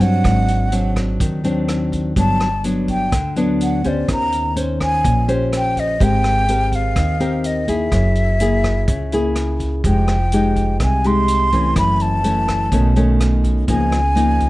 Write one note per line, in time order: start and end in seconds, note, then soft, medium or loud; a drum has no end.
0.00 0.20 G2 medium
0.00 0.22 G2 soft
0.00 0.68 F#3 soft
0.00 0.68 C4 soft
0.00 0.69 D4 medium
0.00 0.97 F#5 medium
0.00 kick soft
0.00 closed hi-hat soft
0.24 1.16 G#1 medium
0.24 1.18 G#2 soft
0.24 kick soft
0.24 cross-stick soft
0.24 closed hi-hat soft
0.48 closed hi-hat soft
0.72 1.40 F#3 soft
0.72 1.40 C4 soft
0.72 1.41 D4 soft
0.72 closed hi-hat soft
0.96 kick soft
0.96 cross-stick medium
0.96 closed hi-hat soft
1.20 2.12 D#2 medium
1.20 2.14 D#3 soft
1.20 kick soft
1.20 closed hi-hat soft
1.44 2.12 F#3 soft
1.44 2.13 C4 medium
1.44 2.13 D4 medium
1.44 closed hi-hat soft
1.68 cross-stick soft
1.68 closed hi-hat soft
1.92 kick soft
1.92 closed hi-hat soft
2.16 3.08 G1 medium
2.16 3.10 G2 soft
2.16 2.47 F#3 soft
2.16 2.48 B3 soft
2.16 2.48 D4 soft
2.16 2.62 A5 medium
2.16 kick medium
2.16 closed hi-hat soft
2.40 cross-stick soft
2.40 closed hi-hat soft
2.64 3.12 F#3 soft
2.64 3.12 B3 soft
2.64 3.12 D4 medium
2.64 closed hi-hat soft
2.88 3.34 G5 medium
2.88 kick soft
2.88 closed hi-hat soft
3.12 4.04 D2 medium
3.12 4.06 D3 soft
3.12 kick medium
3.12 cross-stick medium
3.12 closed hi-hat soft
3.36 3.80 F#3 medium
3.36 3.80 B3 medium
3.36 3.81 D4 medium
3.36 closed hi-hat soft
3.61 3.89 F#5 medium
3.61 closed hi-hat soft
3.84 4.52 C#4 medium
3.84 4.53 G4 medium
3.84 4.53 C5 medium
3.84 4.10 D5 medium
3.84 kick soft
3.84 closed hi-hat soft
4.08 5.00 D#2 medium
4.08 5.02 D#3 soft
4.08 4.55 A#5 medium
4.08 kick soft
4.08 cross-stick soft
4.08 closed hi-hat soft
4.32 closed hi-hat soft
4.56 5.24 C#4 soft
4.56 5.24 C5 medium
4.56 closed hi-hat soft
4.80 5.26 G#5 medium
4.80 kick soft
4.80 cross-stick medium
4.80 closed hi-hat soft
5.04 5.96 A#1 medium
5.04 5.98 A#2 medium
5.04 kick medium
5.04 closed hi-hat soft
5.28 5.96 C#4 medium
5.28 5.96 G4 medium
5.28 5.97 C5 medium
5.28 closed hi-hat soft
5.53 cross-stick soft
5.53 closed hi-hat soft
5.57 5.81 G5 medium
5.76 6.05 D#5 medium
5.76 kick soft
5.76 closed hi-hat soft
6.00 6.92 G#1 medium
6.00 6.94 G#3 soft
6.00 6.44 C4 soft
6.00 6.45 G4 soft
6.00 6.45 A#4 medium
6.00 6.77 G5 medium
6.00 kick soft
6.00 closed hi-hat soft
6.24 cross-stick medium
6.24 closed hi-hat soft
6.48 7.17 C4 medium
6.48 7.17 G4 medium
6.48 7.17 A#4 medium
6.48 closed hi-hat soft
6.72 7.47 F5 medium
6.72 kick soft
6.72 closed hi-hat soft
6.96 7.88 D#2 medium
6.96 7.90 D#3 medium
6.96 kick medium
6.96 cross-stick medium
6.96 closed hi-hat soft
7.20 7.64 C4 medium
7.20 7.64 G4 medium
7.20 7.65 A#4 medium
7.20 closed hi-hat soft
7.44 7.71 D#5 medium
7.44 closed hi-hat soft
7.68 8.36 A#3 soft
7.68 8.36 E4 soft
7.68 8.36 G#4 medium
7.68 9.37 E5 medium
7.68 kick soft
7.68 closed hi-hat soft
7.92 8.84 F#1 medium
7.92 8.86 F#3 soft
7.92 kick soft
7.92 cross-stick soft
7.92 closed hi-hat soft
8.15 closed hi-hat soft
8.40 8.88 A#3 soft
8.40 8.88 E4 soft
8.40 8.88 G#4 soft
8.40 closed hi-hat soft
8.64 kick soft
8.64 cross-stick medium
8.64 closed hi-hat soft
8.88 9.80 C#2 medium
8.88 9.82 C#3 soft
8.88 kick medium
8.88 closed hi-hat soft
9.12 9.81 A#3 medium
9.12 9.81 E4 medium
9.12 9.81 G#4 medium
9.12 closed hi-hat soft
9.35 cross-stick soft
9.35 closed hi-hat soft
9.60 kick soft
9.60 closed hi-hat soft
9.84 10.76 F1 medium
9.84 10.78 F3 soft
9.84 10.15 G#3 soft
9.84 10.15 D#4 soft
9.84 10.16 G4 soft
9.84 10.78 G5 medium
9.84 kick soft
9.84 closed hi-hat soft
10.08 cross-stick soft
10.08 closed hi-hat soft
10.32 11.01 G#3 soft
10.32 11.01 D#4 soft
10.32 11.01 G4 medium
10.32 closed hi-hat soft
10.56 kick soft
10.56 closed hi-hat soft
10.80 11.72 C2 medium
10.80 11.74 C3 medium
10.80 11.08 G#5 medium
10.80 kick medium
10.80 cross-stick medium
10.80 closed hi-hat soft
11.04 11.49 G#3 medium
11.04 11.49 D#4 medium
11.04 11.49 G4 medium
11.04 11.77 C6 medium
11.04 closed hi-hat soft
11.28 closed hi-hat soft
11.52 12.21 E3 medium
11.52 12.21 A3 soft
11.52 12.21 C#4 medium
11.52 kick soft
11.52 closed hi-hat soft
11.76 12.68 F#1 medium
11.76 12.70 F#2 soft
11.76 12.03 B5 medium
11.76 kick soft
11.76 cross-stick medium
11.76 closed hi-hat soft
12.00 12.97 A5 medium
12.00 closed hi-hat soft
12.24 12.70 E3 medium
12.24 12.70 A3 soft
12.24 12.71 C#4 medium
12.24 closed hi-hat soft
12.48 kick soft
12.48 cross-stick medium
12.48 closed hi-hat soft
12.72 13.64 B1 medium
12.72 13.66 B2 medium
12.72 12.93 D#3 medium
12.72 12.93 A3 soft
12.72 12.93 C#4 medium
12.72 kick medium
12.72 closed hi-hat soft
12.96 13.64 D#3 medium
12.96 13.65 A3 medium
12.96 13.65 C#4 medium
12.96 closed hi-hat soft
13.20 cross-stick soft
13.20 closed hi-hat soft
13.44 kick soft
13.44 closed hi-hat soft
13.68 14.49 C#2 medium
13.68 14.49 C#3 soft
13.68 13.99 F3 soft
13.68 13.99 A#3 soft
13.68 13.99 D#4 soft
13.68 14.49 G#5 medium
13.68 kick medium
13.68 closed hi-hat soft
13.92 cross-stick medium
13.92 closed hi-hat soft
14.15 14.49 F3 soft
14.15 14.49 A#3 soft
14.15 14.49 D#4 medium
14.15 closed hi-hat soft
14.40 kick soft
14.40 closed hi-hat soft